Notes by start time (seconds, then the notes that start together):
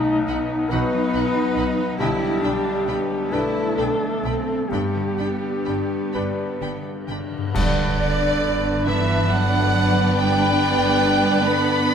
Already playing: B1 B2 F#3 A3 D#4 F#4
0.28 B1 B3 B4 F#5 B5
0.32 D#4
0.50 F#4
0.68 B1 F#3 B3 D#4 B4 F#5 B5
0.73 B4
0.94 F#3
1.13 B1 D#4 F#5 B5
1.36 F#3
1.56 B1 D#4 F#5 B5
1.79 F#3
1.98 B1 D3 G3 D4 E4 G4 G5 B5
2.42 B1 D4 G5 B5
2.66 D4
2.87 B1 B3 D4 B4 G5 B5
3.31 B1 G3 A3 D4 E4 A4 B4 G5 B5
3.77 B1 D4 G5 B5
4.23 B1 C4 D4 G5 B5
4.69 G1 G2 G3 B3 D4 G4
4.73 G5 B5
4.95 D3
5.18 G1 D4 G5 B5
5.42 D4
5.64 G1 D4 B4 G5 B5
6.13 G1 G3 D4 B4 G5 B5
6.60 G1 D3 D4 G5 B5
7.08 G1 D3 D4 G5 B5
7.33 D3
7.37 G2
7.46 B3
7.51 G2 D3 B3 D4 B4 D5
7.55 G1 D4 B4 D5, concert bass drum, crash
8.85 D3 E3 B3 B4 E5
9.28 F#3 F#5
10.15 G3 G5
11.44 B3 B5